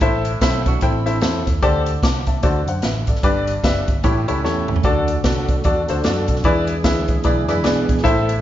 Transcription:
0.01 fingered electric bass A1, upright piano A2 E4 A4 C5 E5, kick, closed hi-hat
0.25 closed hi-hat
0.41 fingered electric bass B1, clean electric guitar C4 E4, upright piano E4 A4 C5 E5, kick, snare, closed hi-hat
0.66 clean electric guitar D4 F#4, kick, closed hi-hat
0.81 fingered electric bass A1, clean electric guitar C4 E4, upright piano E4 A4 C5 G5, kick, closed hi-hat
1.06 upright piano E4 A4 C5 E5, snare, closed hi-hat
1.21 fingered electric bass E2, upright piano E4 A4 C5 E5, snare, closed hi-hat
1.47 fingered electric bass D#2, kick, closed hi-hat
1.62 fingered electric bass D2, upright piano D3 G4 A4 C5 D5, kick, closed hi-hat
1.86 closed hi-hat
2.03 fingered electric bass C2, upright piano A5 D6, kick, snare, closed hi-hat
2.26 upright piano E5 A5, kick, closed hi-hat
2.43 fingered electric bass D2, upright piano D3 F#4 A4 C5 D5, kick, closed hi-hat
2.67 fingered electric bass F#2, upright piano C5 F#5, closed hi-hat
2.82 fingered electric bass A1, upright piano B4 E5, snare, closed hi-hat
3.07 fingered electric bass G#1, upright piano A4 D5, kick, closed hi-hat
3.15 snare
3.23 fingered electric bass G1, upright piano G2 D4 G4 B4 D5, kick, closed hi-hat
3.47 closed hi-hat
3.63 fingered electric bass F#1, upright piano D4 G4 B4 E5, kick, snare, closed hi-hat
3.88 fingered electric bass G1, kick, closed hi-hat
4.04 fingered electric bass A1, upright piano A2 E4 G4 A4 C#5, clean electric guitar E4 G4, kick, closed hi-hat
4.28 fingered electric bass C#2, clean electric guitar C#4 E4, upright piano E4 G4 A4 C#5, closed hi-hat
4.44 fingered electric bass E2, clean electric guitar A3 C#4, upright piano E4 G4 A4 C#5, snare
4.68 fingered electric bass D#2, mid tom
4.76 floor tom
4.83 fingered electric bass D2, upright piano D3 D4 F#4 A4 D5, tonewheel organ D4 F#4 A4, kick, closed hi-hat
5.08 closed hi-hat
5.24 fingered electric bass C2, upright piano D4 F#4 A4 D5, kick, snare, closed hi-hat
5.48 kick, closed hi-hat
5.64 fingered electric bass E2, upright piano D4 F#4 A4 D5, kick, closed hi-hat
5.88 fingered electric bass D2, upright piano D4 F#4 A4 C5, snare, closed hi-hat
6.04 fingered electric bass F#2, upright piano D4 F#4 A4 D5, snare, closed hi-hat
6.28 fingered electric bass B1, kick, closed hi-hat
6.36 snare
6.44 fingered electric bass E2, tonewheel organ E3 G#3 B3 G#4, upright piano E3 E4 G#4 B4 D5, kick, closed hi-hat
6.67 closed hi-hat
6.84 fingered electric bass D2, upright piano E4 G#4 B4 E5, kick, snare, closed hi-hat
7.08 kick, closed hi-hat
7.24 fingered electric bass B1, upright piano E4 G#4 B4 D5, clean electric guitar E4 G#4, kick, closed hi-hat
7.48 fingered electric bass F#2, upright piano E4 G#4 B4 D5, clean electric guitar E4, snare, closed hi-hat
7.64 fingered electric bass B1, clean electric guitar B3 D4, upright piano E4 G#4 B4 D5, snare, closed hi-hat
7.89 fingered electric bass A#1, kick, closed hi-hat
7.98 snare
8.04 fingered electric bass A1, upright piano A2 E4 A4 C5 E5, tonewheel organ E4, kick, closed hi-hat
8.29 closed hi-hat

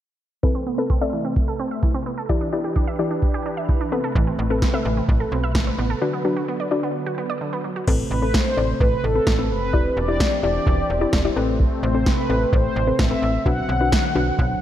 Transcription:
0.43 analog synth pad C3 A3 B4, synth arpeggio sound E3, synth pluck C4 A4 B4, kick
0.55 synth arpeggio sound C4
0.67 synth arpeggio sound B3
0.78 synth pluck C4 A4 B4, synth arpeggio sound A4
0.90 synth arpeggio sound C4, kick
1.01 synth pluck C4 A4 D5, synth arpeggio sound E5
1.13 synth arpeggio sound E3
1.25 synth arpeggio sound C4
1.36 kick
1.48 synth arpeggio sound A4
1.59 synth arpeggio sound C4
1.71 synth arpeggio sound E5
1.83 synth arpeggio sound E3, kick
1.94 synth arpeggio sound C4
2.06 synth arpeggio sound B3
2.18 synth arpeggio sound A4
2.29 synth arpeggio sound E3, analog synth pad E3 D4 G4, synth pluck E4 G4 D5, kick
2.41 synth arpeggio sound D4
2.53 synth arpeggio sound B3, synth pluck E4 G4 D5
2.64 synth arpeggio sound G4
2.76 synth arpeggio sound D4, kick
2.87 synth arpeggio sound E5
2.99 synth arpeggio sound E3, synth pluck E4 G4 D5
3.11 synth arpeggio sound D4
3.22 kick
3.34 synth arpeggio sound G4
3.46 synth arpeggio sound D4
3.57 synth arpeggio sound E5
3.69 synth arpeggio sound E3, kick
3.81 synth arpeggio sound D4
3.92 analog synth pad C3 A3, synth arpeggio sound B3, synth pluck C4 A4 B4
4.04 synth arpeggio sound A4
4.15 fm bass A1, synth arpeggio sound E3, kick
4.27 synth arpeggio sound C4
4.39 fm bass A1, synth arpeggio sound B3
4.50 synth pluck C4 A4 B4, synth arpeggio sound A4
4.62 synth arpeggio sound C4, kick, snare
4.74 synth pluck C4 A4 B4, synth arpeggio sound E5
4.85 fm bass A1, synth arpeggio sound E3
4.97 synth arpeggio sound C4
5.09 fm bass A1, kick
5.20 synth arpeggio sound A4
5.32 fm bass B1, synth arpeggio sound C4
5.44 synth arpeggio sound E5
5.55 fm bass A1, synth arpeggio sound E3, kick, snare
5.67 synth arpeggio sound C4
5.78 fm bass A1, synth arpeggio sound B3
5.90 synth arpeggio sound A4
6.02 analog synth pad D3 F#3, synth arpeggio sound D3, synth pluck D4 F#4 B4
6.13 synth arpeggio sound B3
6.25 synth arpeggio sound F#3, synth pluck D4 F#4 B4
6.37 synth arpeggio sound F#4
6.48 synth arpeggio sound B3
6.60 synth arpeggio sound D5
6.71 synth arpeggio sound D3, synth pluck D4 F#4 D5
6.83 synth arpeggio sound B3
7.06 synth arpeggio sound F#4
7.18 synth arpeggio sound B3
7.30 synth arpeggio sound D5
7.41 synth arpeggio sound D3
7.53 synth arpeggio sound B3
7.64 synth arpeggio sound F#3
7.76 synth arpeggio sound F#4
7.87 fm bass A1, analog synth pad C3 A3 C4, synth pluck C4 A4 B4, kick, crash
8.11 fm bass A1, analog polysynth B4
8.22 synth pluck C4 A4 B4
8.34 analog polysynth C5, kick, snare
8.57 fm bass A1, synth pluck C4 A4 D5
8.80 fm bass A1, analog polysynth B4, kick
9.04 fm bass A1, analog polysynth A4
9.15 synth pluck C4 A4 B4
9.27 fm bass A1, kick, snare
9.39 synth pluck C4 A4 B4
9.50 fm bass F#1, analog polysynth B4
9.73 fm bass E1, analog synth pad E3 D4 G4, synth pluck E4 G4 D5, kick
9.97 fm bass E1, analog polysynth D5
10.08 synth pluck E4 G4 D5
10.20 kick, snare
10.43 fm bass E1, synth pluck E4 G4 D5, analog polysynth D5
10.67 fm bass E1, kick
10.90 fm bass E1
11.01 synth pluck E4 G4 D5
11.13 fm bass E1, kick, snare
11.25 synth pluck E4 G4 D5
11.36 fm bass A1, analog synth pad C3 A3, synth pluck C4 A4 B4
11.60 kick
11.83 fm bass A1, analog polysynth C5
11.94 synth pluck C4 A4 C5
12.06 analog polysynth B4, kick, snare
12.29 fm bass A1, synth pluck C4 A4 B4
12.53 fm bass A1, analog polysynth C5, kick
12.76 fm bass A1
12.87 synth pluck C4 A4 B4
12.99 fm bass A1, analog polysynth E5, kick, snare
13.11 synth pluck C4 A4 B4
13.22 fm bass A1
13.46 fm bass B1, analog synth pad D3 F#3, synth pluck D4 F#4 B4, analog polysynth F#5, kick
13.69 fm bass B1
13.81 synth pluck D4 F#4 B4
13.92 kick, snare
14.15 fm bass B1, synth pluck D4 F#4 B4
14.39 fm bass B1, kick

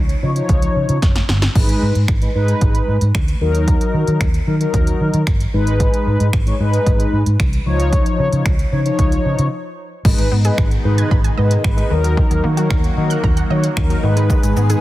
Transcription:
Already playing: fingered electric bass C#2
0.09 closed hi-hat
0.22 fingered electric bass C#3, analog polysynth F3 D#4 C#5
0.36 analog polysynth F3 D#4 C#5, closed hi-hat
0.49 fingered electric bass C#2, kick, closed hi-hat
0.62 closed hi-hat
0.76 fingered electric bass C#3
0.89 fingered electric bass C#3, closed hi-hat
1.02 fingered electric bass F#1, kick, snare, closed hi-hat
1.16 snare, closed hi-hat
1.29 fingered electric bass G1, snare
1.42 snare, closed hi-hat
1.55 fingered electric bass G#1, analog polysynth G#3 D#4 B4, kick, crash
1.69 closed hi-hat
1.82 fingered electric bass G#2
1.95 fingered electric bass G#2, closed hi-hat
2.08 fingered electric bass G#1, finger snap, kick, closed hi-hat
2.21 analog polysynth G#3 D#4 B4, closed hi-hat
2.35 fingered electric bass G#2, analog polysynth G#3 D#4 B4
2.48 closed hi-hat
2.61 fingered electric bass G#1, kick, closed hi-hat
2.75 closed hi-hat
2.88 fingered electric bass G#2
3.01 fingered electric bass G#2, closed hi-hat
3.15 fingered electric bass D2, finger snap, kick, closed hi-hat
3.28 closed hi-hat
3.41 fingered electric bass D#2, analog polysynth F#3 D#4 A#4
3.55 closed hi-hat
3.68 kick, closed hi-hat
3.81 closed hi-hat
3.94 fingered electric bass D#3
4.07 fingered electric bass D#3, closed hi-hat
4.21 fingered electric bass D#2, finger snap, kick, closed hi-hat
4.34 closed hi-hat
4.47 fingered electric bass D#3, analog polysynth F#3 D#4 A#4
4.60 analog polysynth F#3 D#4 A#4, closed hi-hat
4.74 fingered electric bass D#2, kick, closed hi-hat
4.87 closed hi-hat
5.01 fingered electric bass D#3
5.14 fingered electric bass D#3, closed hi-hat
5.27 fingered electric bass G1, finger snap, kick, closed hi-hat
5.40 closed hi-hat
5.53 fingered electric bass G#1, analog polysynth G#3 D#4 B4
5.67 closed hi-hat
5.80 kick, closed hi-hat
5.94 closed hi-hat
6.07 fingered electric bass G#2
6.20 fingered electric bass G#2, closed hi-hat
6.33 fingered electric bass G#1, finger snap, kick, closed hi-hat
6.46 analog polysynth G#3 D#4 C#5, closed hi-hat
6.60 fingered electric bass G#2, analog polysynth G#3 D#4 B4
6.74 closed hi-hat
6.87 fingered electric bass G#1, kick, closed hi-hat
7.00 closed hi-hat
7.13 fingered electric bass G#2
7.26 fingered electric bass G#2, closed hi-hat
7.40 fingered electric bass C2, finger snap, kick, closed hi-hat
7.53 closed hi-hat
7.66 fingered electric bass C#2, analog polysynth F3 D#4 C#5
7.80 closed hi-hat
7.93 kick, closed hi-hat
8.06 closed hi-hat
8.19 fingered electric bass C#3
8.33 fingered electric bass C#3, closed hi-hat
8.46 fingered electric bass C#2, finger snap, kick, closed hi-hat
8.59 closed hi-hat
8.72 fingered electric bass C#3, analog polysynth F3 D#4 C#5
8.85 analog polysynth F3 D#4 C#5, closed hi-hat
8.99 fingered electric bass C#2, kick, closed hi-hat
9.12 closed hi-hat
9.25 fingered electric bass C#3
9.39 fingered electric bass C#3, closed hi-hat
10.05 fingered electric bass G#1, analog synth pad B2 D#3 G#3 D#4, synth arpeggio sound D#3, analog polysynth G#3 D#4 B4, kick, crash
10.18 fingered electric bass G#1, synth arpeggio sound G#3, closed hi-hat
10.32 fingered electric bass G#2, synth arpeggio sound B3
10.45 analog polysynth G#3 D#4 B4, synth arpeggio sound G#4, closed hi-hat
10.58 fingered electric bass G#1, finger snap, kick
10.71 closed hi-hat
10.84 fingered electric bass G#2, analog polysynth G#3 D#4 B4
10.98 synth arpeggio sound G#6, closed hi-hat
11.11 fingered electric bass G#1, synth arpeggio sound B5, kick
11.24 synth arpeggio sound G#5, closed hi-hat
11.37 fingered electric bass G#2, analog polysynth G#3 D#4 B4, synth arpeggio sound D#5
11.51 closed hi-hat
11.64 fingered electric bass G#1, analog polysynth G#3 D#4 B4, synth arpeggio sound B3, finger snap, kick
11.77 synth arpeggio sound G#3, closed hi-hat
11.91 fingered electric bass D#2, synth arpeggio sound D#3, analog polysynth F#3 D#4 A#4, analog synth pad F#3 A#3 F#4
12.04 synth arpeggio sound F#3, closed hi-hat
12.17 synth arpeggio sound D#3, kick
12.31 fingered electric bass D#2, synth arpeggio sound F#3, closed hi-hat
12.44 fingered electric bass D#3, synth arpeggio sound A#3
12.57 analog polysynth F#3 D#4 A#4, synth arpeggio sound F#4, closed hi-hat
12.71 fingered electric bass D#2, finger snap, kick
12.84 closed hi-hat
12.97 fingered electric bass D#3, analog polysynth F#3 D#4 A#4
13.10 synth arpeggio sound F#6, closed hi-hat
13.24 fingered electric bass D#2, synth arpeggio sound A#5, kick
13.37 synth arpeggio sound F#5, closed hi-hat
13.50 fingered electric bass D#3, analog polysynth F#3 D#4 C#5, synth arpeggio sound D#5
13.64 closed hi-hat
13.76 fingered electric bass D#2, analog polysynth F#3 D#4 A#4, synth arpeggio sound A#3, finger snap, kick
13.90 synth arpeggio sound F#3, closed hi-hat
14.03 fingered electric bass G#2, synth arpeggio sound D#3, analog polysynth G#3 D#4 B4, analog synth pad G#3 B3 G#4
14.16 synth arpeggio sound G#3, closed hi-hat
14.30 synth arpeggio sound D#3, kick, shaker
14.43 fingered electric bass G#1, synth arpeggio sound G#3, closed hi-hat, shaker
14.56 fingered electric bass G#2, synth arpeggio sound B3, shaker
14.69 analog polysynth G#3 D#4 B4, synth arpeggio sound G#4, closed hi-hat, shaker

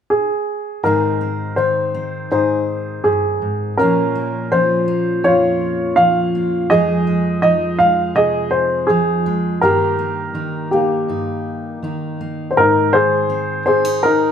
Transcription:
0.10 upright piano G#4
0.83 steel-string acoustic guitar G#2 D#3 C4 D#4 G#4, upright piano D#4 A#4
1.21 steel-string acoustic guitar C4
1.56 steel-string acoustic guitar D#3 D#4, upright piano C5
1.95 steel-string acoustic guitar C4
2.31 steel-string acoustic guitar G#2 G#4, upright piano D#4 C5
3.04 steel-string acoustic guitar G2, upright piano G#4
3.42 steel-string acoustic guitar G#2
3.77 steel-string acoustic guitar A#2 F3 A#3 C#4, upright piano C#4 A#4
3.81 steel-string acoustic guitar F4
4.15 steel-string acoustic guitar A#3
4.52 steel-string acoustic guitar F3 C#4, upright piano C5
4.88 steel-string acoustic guitar A#3
5.24 steel-string acoustic guitar F2 F4, upright piano F4 C#5
5.96 steel-string acoustic guitar F3 C#4, upright piano F5
6.35 steel-string acoustic guitar A#3
6.70 steel-string acoustic guitar F2 F3 G#3 D#4 G#4, upright piano G#4 D#5
7.07 steel-string acoustic guitar G#3
7.42 steel-string acoustic guitar F3 D#4, upright piano D#5
7.79 steel-string acoustic guitar G#3, upright piano F5
8.15 steel-string acoustic guitar C3 G#4, upright piano G#4 D#5
8.51 upright piano C5
8.87 steel-string acoustic guitar F3 D#4, upright piano G#4
9.26 steel-string acoustic guitar G#3
9.61 steel-string acoustic guitar G2 D#3 A#3 D#4 G4, upright piano G4 A#4
9.99 steel-string acoustic guitar A#3
10.34 steel-string acoustic guitar D#3 D#4
10.71 steel-string acoustic guitar A#3, upright piano A#3 G4
11.08 steel-string acoustic guitar G2 D#4
11.83 steel-string acoustic guitar D#3 D#4
12.21 steel-string acoustic guitar A#3
12.51 upright piano C5
12.57 steel-string acoustic guitar G#2, upright piano D#4 A#4
12.93 steel-string acoustic guitar D#3, upright piano G#4 C5
13.30 steel-string acoustic guitar C4
13.66 steel-string acoustic guitar C4, upright piano G#4 C5
13.85 steel-string acoustic guitar D#4
14.03 upright piano D#4 A#4, steel-string acoustic guitar G#4

